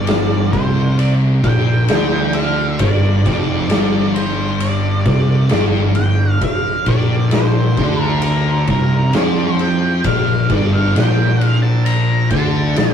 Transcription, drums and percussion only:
0.07 snare loud
0.07 ride medium
0.53 kick loud
0.53 ride medium
0.99 ride medium
1.44 kick loud
1.44 ride medium
1.88 snare loud
1.88 ride medium
2.33 ride medium
2.79 kick loud
2.79 ride loud
3.25 kick loud
3.25 ride medium
3.70 snare loud
3.70 ride loud
4.16 ride medium
4.60 ride medium
5.06 kick loud
5.06 ride medium
5.49 snare loud
5.49 ride medium
5.95 ride medium
6.41 kick loud
6.41 ride medium
6.86 kick loud
6.86 ride medium
7.31 snare loud
7.31 ride medium
7.77 kick loud
7.77 ride medium
8.22 ride loud
8.67 kick medium
8.67 ride medium
9.13 snare loud
9.13 ride medium
9.59 ride medium
10.04 kick loud
10.04 ride medium
10.50 kick loud
10.50 ride medium
10.96 snare loud
10.96 ride medium
11.41 ride medium
11.86 ride medium
12.30 kick loud
12.30 ride medium
12.76 snare loud
12.76 ride loud

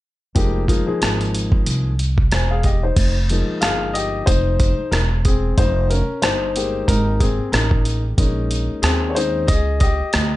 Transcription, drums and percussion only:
0.36 kick loud
0.36 closed hi-hat medium
0.68 kick medium
0.68 closed hi-hat medium
1.02 cross-stick loud
1.02 closed hi-hat medium
1.21 closed hi-hat soft
1.35 closed hi-hat medium
1.52 kick medium
1.66 closed hi-hat medium
1.99 closed hi-hat medium
2.18 kick medium
2.32 cross-stick loud
2.32 closed hi-hat medium
2.64 kick medium
2.64 closed hi-hat medium
2.97 kick loud
2.97 closed hi-hat medium
2.97 crash medium
3.29 closed hi-hat medium
3.62 cross-stick loud
3.62 closed hi-hat medium
3.95 closed hi-hat medium
4.27 kick medium
4.27 closed hi-hat loud
4.60 kick medium
4.60 closed hi-hat medium
4.92 cross-stick loud
4.92 closed hi-hat medium
5.25 kick medium
5.25 closed hi-hat medium
5.58 kick loud
5.58 closed hi-hat medium
5.91 closed hi-hat medium
6.22 cross-stick loud
6.22 closed hi-hat medium
6.56 closed hi-hat medium
6.88 kick medium
6.88 closed hi-hat medium
7.21 kick medium
7.21 closed hi-hat medium
7.53 cross-stick medium
7.53 closed hi-hat medium
7.71 kick medium
7.85 closed hi-hat medium
8.18 kick loud
8.18 closed hi-hat medium
8.51 closed hi-hat medium
8.83 cross-stick loud
8.83 closed hi-hat medium
9.16 closed hi-hat medium
9.48 kick medium
9.48 closed hi-hat medium
9.80 kick medium
9.80 closed hi-hat medium
10.13 cross-stick loud
10.13 closed hi-hat medium

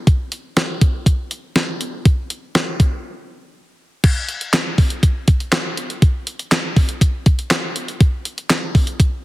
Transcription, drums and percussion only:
0.07 kick loud
0.07 closed hi-hat medium
0.32 closed hi-hat medium
0.57 snare loud
0.57 closed hi-hat medium
0.81 kick medium
0.81 closed hi-hat medium
1.06 kick medium
1.06 closed hi-hat medium
1.31 closed hi-hat medium
1.56 snare loud
1.56 closed hi-hat medium
1.81 closed hi-hat medium
2.05 kick loud
2.05 closed hi-hat medium
2.30 closed hi-hat medium
2.55 snare loud
2.55 closed hi-hat medium
2.80 kick medium
2.80 closed hi-hat medium
4.04 kick loud
4.04 closed hi-hat medium
4.04 crash loud
4.29 closed hi-hat medium
4.41 closed hi-hat medium
4.53 snare loud
4.53 clap medium
4.53 closed hi-hat medium
4.78 kick medium
4.78 open hi-hat medium
4.90 closed hi-hat medium
5.03 kick medium
5.03 closed hi-hat medium
5.28 kick loud
5.28 closed hi-hat medium
5.40 closed hi-hat soft
5.52 snare loud
5.52 clap medium
5.52 closed hi-hat medium
5.77 closed hi-hat medium
5.90 closed hi-hat medium
6.02 kick loud
6.02 closed hi-hat medium
6.27 closed hi-hat medium
6.39 closed hi-hat medium
6.52 snare loud
6.52 clap medium
6.52 closed hi-hat medium
6.76 kick loud
6.76 open hi-hat medium
6.89 closed hi-hat medium
7.01 kick medium
7.01 closed hi-hat medium
7.26 kick loud
7.26 closed hi-hat medium
7.39 closed hi-hat soft
7.51 snare loud
7.51 clap loud
7.51 closed hi-hat medium
7.76 closed hi-hat medium
7.88 closed hi-hat medium
8.01 kick loud
8.01 closed hi-hat medium
8.25 closed hi-hat medium
8.38 closed hi-hat medium
8.50 snare loud
8.50 clap medium
8.50 closed hi-hat medium
8.75 kick loud
8.75 open hi-hat medium
8.87 closed hi-hat medium
9.00 kick medium
9.00 closed hi-hat medium

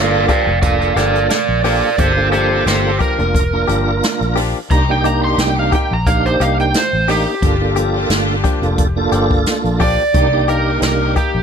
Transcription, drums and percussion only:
0.29 kick medium
0.29 closed hi-hat medium
0.62 kick medium
0.62 closed hi-hat medium
0.81 closed hi-hat soft
0.97 snare soft
0.97 closed hi-hat medium
1.15 closed hi-hat soft
1.30 snare loud
1.30 closed hi-hat medium
1.64 open hi-hat medium
1.98 kick loud
1.98 closed hi-hat medium
2.33 closed hi-hat medium
2.67 snare loud
2.67 closed hi-hat medium
3.01 kick medium
3.01 closed hi-hat medium
3.19 closed hi-hat soft
3.35 kick medium
3.35 closed hi-hat medium
3.69 closed hi-hat medium
4.03 snare loud
4.03 closed hi-hat medium
4.22 closed hi-hat soft
4.37 open hi-hat medium
4.71 kick loud
4.71 closed hi-hat medium
5.05 closed hi-hat medium
5.38 snare loud
5.38 closed hi-hat medium
5.73 kick medium
5.73 closed hi-hat medium
6.06 kick medium
6.06 closed hi-hat medium
6.26 closed hi-hat soft
6.41 closed hi-hat medium
6.59 closed hi-hat soft
6.74 snare loud
6.74 closed hi-hat medium
7.08 snare soft
7.08 open hi-hat medium
7.42 kick loud
7.42 closed hi-hat medium
7.76 closed hi-hat medium
8.10 snare loud
8.10 closed hi-hat medium
8.44 kick medium
8.44 closed hi-hat medium
8.63 closed hi-hat soft
8.78 kick medium
8.78 closed hi-hat medium
9.12 closed hi-hat medium
9.31 kick medium
9.46 snare loud
9.46 closed hi-hat medium
9.65 closed hi-hat soft
9.80 kick medium
9.80 open hi-hat medium
10.14 kick loud
10.14 closed hi-hat medium
10.48 closed hi-hat medium
10.82 snare loud
10.82 closed hi-hat medium
11.16 kick medium
11.16 closed hi-hat medium

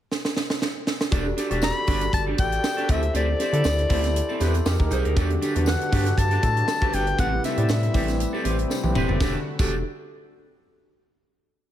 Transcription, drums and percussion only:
0.12 snare medium
0.25 snare medium
0.36 snare medium
0.50 snare medium
0.62 snare medium
0.87 snare medium
1.01 snare medium
1.12 kick medium
1.12 closed hi-hat medium
1.12 tambourine soft
1.37 snare soft
1.37 closed hi-hat medium
1.37 tambourine soft
1.51 closed hi-hat soft
1.51 tambourine soft
1.62 snare medium
1.62 tambourine medium
1.87 kick medium
1.87 open hi-hat medium
1.87 tambourine soft
2.01 closed hi-hat medium
2.01 tambourine soft
2.13 kick medium
2.13 closed hi-hat medium
2.13 tambourine soft
2.38 kick medium
2.38 closed hi-hat medium
2.38 tambourine soft
2.52 closed hi-hat soft
2.52 tambourine soft
2.64 snare medium
2.64 tambourine medium
2.78 closed hi-hat soft
2.89 kick medium
2.89 closed hi-hat medium
2.89 tambourine soft
3.02 closed hi-hat soft
3.15 closed hi-hat medium
3.15 tambourine soft
3.40 snare soft
3.40 closed hi-hat medium
3.40 tambourine soft
3.53 closed hi-hat medium
3.64 snare medium
3.64 tambourine medium
3.78 closed hi-hat soft
3.90 kick medium
3.90 open hi-hat medium
3.90 tambourine soft
4.04 snare soft
4.04 closed hi-hat medium
4.04 tambourine soft
4.16 closed hi-hat medium
4.16 tambourine soft
4.29 tambourine soft
4.40 snare soft
4.40 closed hi-hat medium
4.40 tambourine soft
4.54 closed hi-hat soft
4.54 tambourine soft
4.66 snare medium
4.66 tambourine medium
4.80 kick medium
4.91 closed hi-hat medium
4.91 tambourine soft
5.05 closed hi-hat soft
5.16 kick medium
5.16 closed hi-hat medium
5.16 tambourine soft
5.30 closed hi-hat soft
5.42 closed hi-hat medium
5.42 tambourine soft
5.56 closed hi-hat medium
5.56 tambourine soft
5.66 snare medium
5.66 tambourine medium
5.81 closed hi-hat soft
5.92 kick medium
5.92 open hi-hat medium
5.92 tambourine soft
6.06 snare soft
6.06 closed hi-hat soft
6.18 kick medium
6.18 closed hi-hat medium
6.18 tambourine soft
6.31 closed hi-hat soft
6.31 tambourine soft
6.43 kick medium
6.43 closed hi-hat medium
6.43 tambourine soft
6.57 closed hi-hat soft
6.68 snare medium
6.68 tambourine medium
6.82 kick medium
6.82 closed hi-hat soft
6.93 closed hi-hat medium
6.93 tambourine soft
7.07 closed hi-hat soft
7.18 kick medium
7.18 closed hi-hat medium
7.18 tambourine soft
7.44 snare soft
7.44 closed hi-hat medium
7.44 tambourine soft
7.57 closed hi-hat medium
7.69 snare loud
7.69 tambourine medium
7.83 closed hi-hat soft
7.94 kick medium
7.94 open hi-hat medium
7.94 tambourine medium
8.08 snare soft
8.08 closed hi-hat medium
8.08 tambourine soft
8.20 closed hi-hat medium
8.20 tambourine soft
8.34 tambourine soft
8.45 closed hi-hat medium
8.45 tambourine soft
8.59 closed hi-hat soft
8.70 snare soft
8.70 tambourine medium
8.84 high tom medium
8.95 mid tom medium
8.95 tambourine soft
9.09 floor tom medium
9.21 kick medium
9.21 snare medium
9.21 tambourine medium
9.59 kick medium
9.59 crash medium
9.59 tambourine medium

